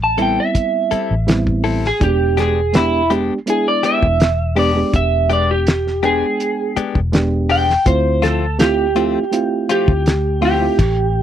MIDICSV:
0, 0, Header, 1, 7, 480
1, 0, Start_track
1, 0, Tempo, 731707
1, 1319, Time_signature, 4, 2, 24, 8
1, 7364, End_track
2, 0, Start_track
2, 0, Title_t, "Clean electric guitar"
2, 0, Program_c, 0, 27
2, 23, Note_on_c, 0, 81, 85
2, 127, Note_off_c, 0, 81, 0
2, 145, Note_on_c, 0, 79, 86
2, 252, Note_off_c, 0, 79, 0
2, 262, Note_on_c, 0, 76, 98
2, 1185, Note_off_c, 0, 76, 0
2, 1226, Note_on_c, 0, 68, 90
2, 1328, Note_off_c, 0, 68, 0
2, 1336, Note_on_c, 0, 67, 88
2, 1560, Note_off_c, 0, 67, 0
2, 1575, Note_on_c, 0, 68, 92
2, 1800, Note_off_c, 0, 68, 0
2, 1810, Note_on_c, 0, 64, 102
2, 2037, Note_off_c, 0, 64, 0
2, 2295, Note_on_c, 0, 68, 91
2, 2406, Note_off_c, 0, 68, 0
2, 2414, Note_on_c, 0, 74, 87
2, 2521, Note_off_c, 0, 74, 0
2, 2528, Note_on_c, 0, 76, 97
2, 2988, Note_off_c, 0, 76, 0
2, 3012, Note_on_c, 0, 74, 77
2, 3237, Note_off_c, 0, 74, 0
2, 3252, Note_on_c, 0, 76, 92
2, 3478, Note_off_c, 0, 76, 0
2, 3497, Note_on_c, 0, 74, 87
2, 3607, Note_off_c, 0, 74, 0
2, 3614, Note_on_c, 0, 67, 79
2, 3953, Note_off_c, 0, 67, 0
2, 3970, Note_on_c, 0, 68, 109
2, 4429, Note_off_c, 0, 68, 0
2, 4930, Note_on_c, 0, 79, 89
2, 5156, Note_off_c, 0, 79, 0
2, 5164, Note_on_c, 0, 72, 89
2, 5394, Note_off_c, 0, 72, 0
2, 5401, Note_on_c, 0, 69, 93
2, 5632, Note_off_c, 0, 69, 0
2, 5641, Note_on_c, 0, 67, 91
2, 6338, Note_off_c, 0, 67, 0
2, 6372, Note_on_c, 0, 67, 98
2, 6831, Note_off_c, 0, 67, 0
2, 6856, Note_on_c, 0, 67, 83
2, 7364, Note_off_c, 0, 67, 0
2, 7364, End_track
3, 0, Start_track
3, 0, Title_t, "Clean electric guitar"
3, 0, Program_c, 1, 27
3, 118, Note_on_c, 1, 69, 72
3, 122, Note_on_c, 1, 64, 62
3, 124, Note_on_c, 1, 60, 59
3, 127, Note_on_c, 1, 55, 53
3, 265, Note_off_c, 1, 69, 0
3, 267, Note_off_c, 1, 64, 0
3, 268, Note_off_c, 1, 60, 0
3, 270, Note_off_c, 1, 55, 0
3, 598, Note_on_c, 1, 69, 66
3, 601, Note_on_c, 1, 64, 69
3, 604, Note_on_c, 1, 60, 60
3, 607, Note_on_c, 1, 55, 58
3, 745, Note_off_c, 1, 69, 0
3, 747, Note_off_c, 1, 64, 0
3, 748, Note_off_c, 1, 60, 0
3, 749, Note_off_c, 1, 55, 0
3, 1075, Note_on_c, 1, 69, 69
3, 1077, Note_on_c, 1, 64, 68
3, 1081, Note_on_c, 1, 60, 61
3, 1084, Note_on_c, 1, 55, 59
3, 1223, Note_off_c, 1, 69, 0
3, 1224, Note_off_c, 1, 64, 0
3, 1226, Note_off_c, 1, 60, 0
3, 1228, Note_off_c, 1, 55, 0
3, 1557, Note_on_c, 1, 67, 67
3, 1561, Note_on_c, 1, 62, 67
3, 1563, Note_on_c, 1, 59, 53
3, 1567, Note_on_c, 1, 56, 52
3, 1704, Note_off_c, 1, 67, 0
3, 1706, Note_off_c, 1, 62, 0
3, 1707, Note_off_c, 1, 59, 0
3, 1709, Note_off_c, 1, 56, 0
3, 2035, Note_on_c, 1, 67, 68
3, 2039, Note_on_c, 1, 62, 60
3, 2042, Note_on_c, 1, 59, 52
3, 2044, Note_on_c, 1, 56, 53
3, 2183, Note_off_c, 1, 67, 0
3, 2185, Note_off_c, 1, 62, 0
3, 2186, Note_off_c, 1, 59, 0
3, 2187, Note_off_c, 1, 56, 0
3, 2514, Note_on_c, 1, 67, 69
3, 2518, Note_on_c, 1, 62, 59
3, 2522, Note_on_c, 1, 59, 62
3, 2523, Note_on_c, 1, 56, 60
3, 2662, Note_off_c, 1, 67, 0
3, 2664, Note_off_c, 1, 62, 0
3, 2666, Note_off_c, 1, 59, 0
3, 2667, Note_off_c, 1, 56, 0
3, 2995, Note_on_c, 1, 67, 72
3, 2997, Note_on_c, 1, 62, 71
3, 3000, Note_on_c, 1, 59, 58
3, 3004, Note_on_c, 1, 56, 60
3, 3142, Note_off_c, 1, 67, 0
3, 3144, Note_off_c, 1, 62, 0
3, 3145, Note_off_c, 1, 59, 0
3, 3147, Note_off_c, 1, 56, 0
3, 3474, Note_on_c, 1, 67, 72
3, 3477, Note_on_c, 1, 62, 66
3, 3479, Note_on_c, 1, 59, 59
3, 3483, Note_on_c, 1, 56, 61
3, 3622, Note_off_c, 1, 67, 0
3, 3624, Note_off_c, 1, 62, 0
3, 3625, Note_off_c, 1, 59, 0
3, 3627, Note_off_c, 1, 56, 0
3, 3955, Note_on_c, 1, 67, 71
3, 3958, Note_on_c, 1, 62, 69
3, 3960, Note_on_c, 1, 59, 59
3, 3964, Note_on_c, 1, 56, 63
3, 4102, Note_off_c, 1, 67, 0
3, 4104, Note_off_c, 1, 62, 0
3, 4105, Note_off_c, 1, 59, 0
3, 4107, Note_off_c, 1, 56, 0
3, 4438, Note_on_c, 1, 67, 68
3, 4442, Note_on_c, 1, 62, 63
3, 4444, Note_on_c, 1, 59, 64
3, 4446, Note_on_c, 1, 56, 63
3, 4584, Note_off_c, 1, 67, 0
3, 4586, Note_off_c, 1, 62, 0
3, 4587, Note_off_c, 1, 59, 0
3, 4588, Note_off_c, 1, 56, 0
3, 4917, Note_on_c, 1, 67, 83
3, 4921, Note_on_c, 1, 62, 71
3, 4924, Note_on_c, 1, 59, 63
3, 4926, Note_on_c, 1, 56, 60
3, 5064, Note_off_c, 1, 67, 0
3, 5065, Note_off_c, 1, 62, 0
3, 5067, Note_off_c, 1, 59, 0
3, 5068, Note_off_c, 1, 56, 0
3, 5394, Note_on_c, 1, 65, 69
3, 5398, Note_on_c, 1, 60, 70
3, 5401, Note_on_c, 1, 57, 57
3, 5403, Note_on_c, 1, 53, 58
3, 5542, Note_off_c, 1, 65, 0
3, 5544, Note_off_c, 1, 60, 0
3, 5545, Note_off_c, 1, 57, 0
3, 5547, Note_off_c, 1, 53, 0
3, 5877, Note_on_c, 1, 65, 71
3, 5881, Note_on_c, 1, 60, 72
3, 5885, Note_on_c, 1, 57, 63
3, 5887, Note_on_c, 1, 53, 60
3, 6024, Note_off_c, 1, 65, 0
3, 6026, Note_off_c, 1, 60, 0
3, 6028, Note_off_c, 1, 57, 0
3, 6029, Note_off_c, 1, 53, 0
3, 6359, Note_on_c, 1, 65, 64
3, 6362, Note_on_c, 1, 60, 69
3, 6365, Note_on_c, 1, 57, 62
3, 6370, Note_on_c, 1, 53, 54
3, 6505, Note_off_c, 1, 65, 0
3, 6506, Note_off_c, 1, 60, 0
3, 6508, Note_off_c, 1, 57, 0
3, 6510, Note_off_c, 1, 53, 0
3, 6836, Note_on_c, 1, 65, 72
3, 6840, Note_on_c, 1, 60, 70
3, 6842, Note_on_c, 1, 57, 67
3, 6846, Note_on_c, 1, 53, 57
3, 6983, Note_off_c, 1, 65, 0
3, 6985, Note_off_c, 1, 60, 0
3, 6986, Note_off_c, 1, 57, 0
3, 6988, Note_off_c, 1, 53, 0
3, 7364, End_track
4, 0, Start_track
4, 0, Title_t, "Reed electric piano"
4, 0, Program_c, 2, 4
4, 112, Note_on_c, 2, 55, 65
4, 117, Note_on_c, 2, 59, 64
4, 120, Note_on_c, 2, 60, 59
4, 124, Note_on_c, 2, 64, 76
4, 637, Note_off_c, 2, 55, 0
4, 640, Note_off_c, 2, 59, 0
4, 641, Note_off_c, 2, 60, 0
4, 643, Note_off_c, 2, 64, 0
4, 831, Note_on_c, 2, 55, 85
4, 836, Note_on_c, 2, 59, 75
4, 840, Note_on_c, 2, 60, 76
4, 842, Note_on_c, 2, 64, 93
4, 1185, Note_off_c, 2, 55, 0
4, 1187, Note_off_c, 2, 59, 0
4, 1189, Note_off_c, 2, 60, 0
4, 1190, Note_off_c, 2, 64, 0
4, 1312, Note_on_c, 2, 56, 70
4, 1317, Note_on_c, 2, 59, 66
4, 1322, Note_on_c, 2, 62, 69
4, 1326, Note_on_c, 2, 67, 80
4, 1665, Note_off_c, 2, 56, 0
4, 1667, Note_off_c, 2, 59, 0
4, 1670, Note_off_c, 2, 62, 0
4, 1672, Note_off_c, 2, 67, 0
4, 1790, Note_on_c, 2, 56, 76
4, 1797, Note_on_c, 2, 59, 76
4, 1798, Note_on_c, 2, 62, 68
4, 1802, Note_on_c, 2, 67, 89
4, 1969, Note_off_c, 2, 56, 0
4, 1973, Note_off_c, 2, 59, 0
4, 1973, Note_off_c, 2, 62, 0
4, 1975, Note_off_c, 2, 67, 0
4, 2034, Note_on_c, 2, 56, 71
4, 2038, Note_on_c, 2, 59, 60
4, 2041, Note_on_c, 2, 62, 67
4, 2046, Note_on_c, 2, 67, 79
4, 2211, Note_off_c, 2, 56, 0
4, 2213, Note_off_c, 2, 59, 0
4, 2215, Note_off_c, 2, 62, 0
4, 2217, Note_off_c, 2, 67, 0
4, 2270, Note_on_c, 2, 56, 67
4, 2275, Note_on_c, 2, 59, 63
4, 2278, Note_on_c, 2, 62, 63
4, 2283, Note_on_c, 2, 64, 77
4, 2795, Note_off_c, 2, 56, 0
4, 2798, Note_off_c, 2, 59, 0
4, 2800, Note_off_c, 2, 62, 0
4, 2802, Note_off_c, 2, 64, 0
4, 2990, Note_on_c, 2, 56, 80
4, 2993, Note_on_c, 2, 59, 77
4, 2997, Note_on_c, 2, 62, 68
4, 3001, Note_on_c, 2, 67, 94
4, 3083, Note_off_c, 2, 56, 0
4, 3084, Note_off_c, 2, 59, 0
4, 3086, Note_off_c, 2, 62, 0
4, 3088, Note_off_c, 2, 67, 0
4, 3115, Note_on_c, 2, 56, 67
4, 3120, Note_on_c, 2, 59, 57
4, 3124, Note_on_c, 2, 62, 55
4, 3129, Note_on_c, 2, 67, 69
4, 3722, Note_off_c, 2, 56, 0
4, 3725, Note_off_c, 2, 59, 0
4, 3727, Note_off_c, 2, 62, 0
4, 3729, Note_off_c, 2, 67, 0
4, 3953, Note_on_c, 2, 56, 69
4, 3954, Note_on_c, 2, 59, 65
4, 3962, Note_on_c, 2, 62, 63
4, 3963, Note_on_c, 2, 79, 76
4, 4477, Note_off_c, 2, 56, 0
4, 4477, Note_off_c, 2, 59, 0
4, 4481, Note_off_c, 2, 62, 0
4, 4482, Note_off_c, 2, 79, 0
4, 4673, Note_on_c, 2, 56, 82
4, 4676, Note_on_c, 2, 59, 80
4, 4681, Note_on_c, 2, 62, 81
4, 4685, Note_on_c, 2, 67, 88
4, 5025, Note_off_c, 2, 56, 0
4, 5027, Note_off_c, 2, 59, 0
4, 5029, Note_off_c, 2, 62, 0
4, 5031, Note_off_c, 2, 67, 0
4, 5154, Note_on_c, 2, 57, 78
4, 5156, Note_on_c, 2, 60, 73
4, 5160, Note_on_c, 2, 64, 68
4, 5163, Note_on_c, 2, 65, 84
4, 5506, Note_off_c, 2, 57, 0
4, 5507, Note_off_c, 2, 60, 0
4, 5509, Note_off_c, 2, 64, 0
4, 5510, Note_off_c, 2, 65, 0
4, 5633, Note_on_c, 2, 57, 84
4, 5637, Note_on_c, 2, 60, 70
4, 5640, Note_on_c, 2, 64, 71
4, 5644, Note_on_c, 2, 65, 83
4, 5810, Note_off_c, 2, 57, 0
4, 5812, Note_off_c, 2, 60, 0
4, 5814, Note_off_c, 2, 64, 0
4, 5816, Note_off_c, 2, 65, 0
4, 5872, Note_on_c, 2, 57, 75
4, 5879, Note_on_c, 2, 60, 71
4, 5881, Note_on_c, 2, 64, 66
4, 5885, Note_on_c, 2, 65, 81
4, 6050, Note_off_c, 2, 57, 0
4, 6053, Note_off_c, 2, 60, 0
4, 6055, Note_off_c, 2, 64, 0
4, 6056, Note_off_c, 2, 65, 0
4, 6111, Note_on_c, 2, 57, 68
4, 6117, Note_on_c, 2, 60, 63
4, 6120, Note_on_c, 2, 64, 61
4, 6125, Note_on_c, 2, 65, 77
4, 6636, Note_off_c, 2, 57, 0
4, 6639, Note_off_c, 2, 60, 0
4, 6641, Note_off_c, 2, 64, 0
4, 6643, Note_off_c, 2, 65, 0
4, 6830, Note_on_c, 2, 57, 87
4, 6835, Note_on_c, 2, 60, 71
4, 6838, Note_on_c, 2, 64, 75
4, 6842, Note_on_c, 2, 65, 86
4, 6923, Note_off_c, 2, 57, 0
4, 6925, Note_off_c, 2, 60, 0
4, 6927, Note_off_c, 2, 64, 0
4, 6929, Note_off_c, 2, 65, 0
4, 6952, Note_on_c, 2, 57, 64
4, 6957, Note_on_c, 2, 60, 55
4, 6962, Note_on_c, 2, 64, 63
4, 6965, Note_on_c, 2, 65, 71
4, 7074, Note_off_c, 2, 57, 0
4, 7076, Note_off_c, 2, 60, 0
4, 7078, Note_off_c, 2, 64, 0
4, 7080, Note_off_c, 2, 65, 0
4, 7364, End_track
5, 0, Start_track
5, 0, Title_t, "Fingered electric bass"
5, 0, Program_c, 3, 33
5, 0, Note_on_c, 3, 33, 103
5, 244, Note_off_c, 3, 33, 0
5, 727, Note_on_c, 3, 33, 88
5, 1249, Note_off_c, 3, 33, 0
5, 1320, Note_on_c, 3, 28, 85
5, 2163, Note_off_c, 3, 28, 0
5, 2642, Note_on_c, 3, 28, 94
5, 3166, Note_off_c, 3, 28, 0
5, 3239, Note_on_c, 3, 28, 98
5, 4082, Note_off_c, 3, 28, 0
5, 4563, Note_on_c, 3, 28, 91
5, 5087, Note_off_c, 3, 28, 0
5, 5158, Note_on_c, 3, 38, 98
5, 6002, Note_off_c, 3, 38, 0
5, 6481, Note_on_c, 3, 38, 90
5, 7006, Note_off_c, 3, 38, 0
5, 7077, Note_on_c, 3, 33, 100
5, 7364, Note_off_c, 3, 33, 0
5, 7364, End_track
6, 0, Start_track
6, 0, Title_t, "Muted fingered electric bass strokes"
6, 603, Note_on_c, 9, 29, 35
6, 669, Note_off_c, 9, 29, 0
6, 4439, Note_on_c, 9, 29, 38
6, 4504, Note_off_c, 9, 29, 0
6, 7364, End_track
7, 0, Start_track
7, 0, Title_t, "Drums"
7, 121, Note_on_c, 9, 42, 52
7, 187, Note_off_c, 9, 42, 0
7, 360, Note_on_c, 9, 36, 75
7, 360, Note_on_c, 9, 42, 71
7, 426, Note_off_c, 9, 36, 0
7, 426, Note_off_c, 9, 42, 0
7, 599, Note_on_c, 9, 42, 65
7, 665, Note_off_c, 9, 42, 0
7, 840, Note_on_c, 9, 42, 81
7, 850, Note_on_c, 9, 38, 101
7, 905, Note_off_c, 9, 42, 0
7, 916, Note_off_c, 9, 38, 0
7, 963, Note_on_c, 9, 36, 78
7, 1029, Note_off_c, 9, 36, 0
7, 1080, Note_on_c, 9, 46, 86
7, 1146, Note_off_c, 9, 46, 0
7, 1213, Note_on_c, 9, 38, 32
7, 1279, Note_off_c, 9, 38, 0
7, 1319, Note_on_c, 9, 36, 113
7, 1319, Note_on_c, 9, 42, 80
7, 1384, Note_off_c, 9, 42, 0
7, 1385, Note_off_c, 9, 36, 0
7, 1558, Note_on_c, 9, 42, 60
7, 1569, Note_on_c, 9, 38, 36
7, 1624, Note_off_c, 9, 42, 0
7, 1634, Note_off_c, 9, 38, 0
7, 1795, Note_on_c, 9, 42, 83
7, 1805, Note_on_c, 9, 38, 99
7, 1860, Note_off_c, 9, 42, 0
7, 1871, Note_off_c, 9, 38, 0
7, 2036, Note_on_c, 9, 42, 66
7, 2102, Note_off_c, 9, 42, 0
7, 2276, Note_on_c, 9, 42, 76
7, 2342, Note_off_c, 9, 42, 0
7, 2518, Note_on_c, 9, 42, 70
7, 2584, Note_off_c, 9, 42, 0
7, 2641, Note_on_c, 9, 36, 75
7, 2707, Note_off_c, 9, 36, 0
7, 2755, Note_on_c, 9, 42, 82
7, 2766, Note_on_c, 9, 38, 100
7, 2821, Note_off_c, 9, 42, 0
7, 2831, Note_off_c, 9, 38, 0
7, 2997, Note_on_c, 9, 46, 86
7, 3063, Note_off_c, 9, 46, 0
7, 3237, Note_on_c, 9, 42, 79
7, 3238, Note_on_c, 9, 36, 111
7, 3303, Note_off_c, 9, 36, 0
7, 3303, Note_off_c, 9, 42, 0
7, 3480, Note_on_c, 9, 42, 62
7, 3545, Note_off_c, 9, 42, 0
7, 3717, Note_on_c, 9, 42, 82
7, 3728, Note_on_c, 9, 38, 102
7, 3783, Note_off_c, 9, 42, 0
7, 3794, Note_off_c, 9, 38, 0
7, 3851, Note_on_c, 9, 38, 35
7, 3917, Note_off_c, 9, 38, 0
7, 3958, Note_on_c, 9, 42, 57
7, 4024, Note_off_c, 9, 42, 0
7, 4199, Note_on_c, 9, 42, 72
7, 4265, Note_off_c, 9, 42, 0
7, 4438, Note_on_c, 9, 42, 64
7, 4504, Note_off_c, 9, 42, 0
7, 4561, Note_on_c, 9, 36, 72
7, 4627, Note_off_c, 9, 36, 0
7, 4679, Note_on_c, 9, 42, 80
7, 4689, Note_on_c, 9, 38, 107
7, 4744, Note_off_c, 9, 42, 0
7, 4755, Note_off_c, 9, 38, 0
7, 4918, Note_on_c, 9, 46, 85
7, 4983, Note_off_c, 9, 46, 0
7, 5051, Note_on_c, 9, 38, 33
7, 5117, Note_off_c, 9, 38, 0
7, 5155, Note_on_c, 9, 42, 80
7, 5157, Note_on_c, 9, 36, 105
7, 5220, Note_off_c, 9, 42, 0
7, 5222, Note_off_c, 9, 36, 0
7, 5399, Note_on_c, 9, 42, 68
7, 5409, Note_on_c, 9, 38, 39
7, 5464, Note_off_c, 9, 42, 0
7, 5475, Note_off_c, 9, 38, 0
7, 5638, Note_on_c, 9, 42, 83
7, 5648, Note_on_c, 9, 38, 95
7, 5703, Note_off_c, 9, 42, 0
7, 5714, Note_off_c, 9, 38, 0
7, 5876, Note_on_c, 9, 42, 62
7, 5942, Note_off_c, 9, 42, 0
7, 6118, Note_on_c, 9, 42, 84
7, 6183, Note_off_c, 9, 42, 0
7, 6359, Note_on_c, 9, 42, 77
7, 6425, Note_off_c, 9, 42, 0
7, 6481, Note_on_c, 9, 36, 83
7, 6547, Note_off_c, 9, 36, 0
7, 6599, Note_on_c, 9, 42, 87
7, 6610, Note_on_c, 9, 38, 101
7, 6665, Note_off_c, 9, 42, 0
7, 6675, Note_off_c, 9, 38, 0
7, 6840, Note_on_c, 9, 46, 83
7, 6905, Note_off_c, 9, 46, 0
7, 7077, Note_on_c, 9, 36, 111
7, 7078, Note_on_c, 9, 42, 82
7, 7078, Note_on_c, 9, 49, 80
7, 7143, Note_off_c, 9, 36, 0
7, 7144, Note_off_c, 9, 42, 0
7, 7144, Note_off_c, 9, 49, 0
7, 7364, End_track
0, 0, End_of_file